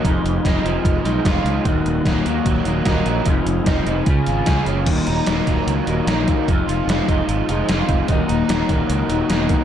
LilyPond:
<<
  \new Staff \with { instrumentName = "Transistor combo organ" } { \time 4/4 \key ees \minor \tempo 4 = 149 << { <aes' ces'' f''>1 | <ges' bes' ges''>1 | <aes' ces'' f''>1 | r1 |
r1 | <ges' bes' ges''>1 | } \\ { ees'1~ | ees'1~ | ees'2 des'2 | r1 |
r1 | ees'1 | } >> }
  \new Staff \with { instrumentName = "Clean electric guitar" } { \clef bass \time 4/4 \key ees \minor <f, c f aes ees' f'>4 <f, c f aes ees' f'>8 <f aes ees' f'>4 <f aes ees' f'>8 <f aes ees' f'>4 | <ees, bes, ees ges bes ees'>4 <ees, bes, ees ges bes ees'>8 <ees ges bes ees'>4 <ees ges bes ees'>8 <ees ges bes ees'>4 | <f, c f aes ees' f'>4 <f, c f aes ees' f'>8 <f aes ees' f'>8 <des aes des' f' aes'>8 <des' f' aes'>8 <aes des' f' aes'>4 | <ees, bes, ees ges bes ees'>8 <ees ges bes ees'>8 <ees ges bes ees'>8 <ees ges bes ees'>4 <ees ges bes ees'>8 <ees, bes, ees ges bes ees'>4 |
<f, c f aes ees' f'>8 <f aes ees' f'>8 <f aes ees' f'>8 <f aes ees' f'>4 <f aes ees' f'>8 <f, c f aes ees' f'>4 | <ees, bes, ees ges bes ees'>8 <ees ges bes ees'>8 <ees ges bes ees'>8 <ees ges bes ees'>4 <ees ges bes ees'>8 <ees, bes, ees ges bes ees'>4 | }
  \new Staff \with { instrumentName = "Overdriven electric guitar" } { \clef bass \time 4/4 \key ees \minor f,4 ees'8 f8 aes8 ees'8 f'8 aes8 | ees,4 bes8 ees8 ges8 bes8 ees'8 ges8 | f,4 ees'8 f8 des8 f'8 aes'8 des'8 | ees,8 ees'8 ges8 bes8 ees8 ges8 ees'8 bes8 |
f,8 f'8 aes8 ees'8 f8 aes8 f'8 ees'8 | ees,8 ees'8 ges8 bes8 ees8 ges8 ees'8 bes8 | }
  \new Staff \with { instrumentName = "Fingered electric bass" } { \clef bass \time 4/4 \key ees \minor f,,8 f,,8 f,,8 f,,8 f,,8 ces,8 f,,8 des,8 | ees,,8 ees,,8 ees,,8 ees,8 ees,,8 ees,,8 ees,,8 bes,,8 | f,,8 f,,8 f,,8 f,,8 des,8 aes,,8 des,8 ges,,8 | ees,,8 ees,,8 ees,,8 ees,,8 des,8 ees,,8 bes,,4 |
f,,8 f,,8 f,,8 f,,8 aes,,8 f,,8 f,,8 f,,8 | ees,,8 ees,,8 ees,,8 ees,,8 des,8 ees,,8 fes,,4 | }
  \new DrumStaff \with { instrumentName = "Drums" } \drummode { \time 4/4 <hh bd>8 hh8 <hh bd sn>8 hh8 <hh bd>8 hh8 <hh bd sn>8 hh8 | <hh bd>8 hh8 <hh bd sn>8 hh8 <hh bd>16 sn16 hh8 <hh bd sn>8 hh8 | <hh bd>8 hh8 <hh bd sn>8 hh8 <hh bd>8 hh8 <hh bd sn>8 hh8 | <cymc hh bd>8 hh8 <hh sn>8 <hh bd>8 hh8 hh8 <hh sn>8 <hh bd>8 |
<hh bd>8 hh8 <hh sn>8 <hh bd>8 hh8 hh8 <hh sn>8 <hh bd>8 | <hh bd>8 hh8 <hh sn>8 <hh bd>8 hh8 hh8 <hh sn>8 <hh bd>8 | }
>>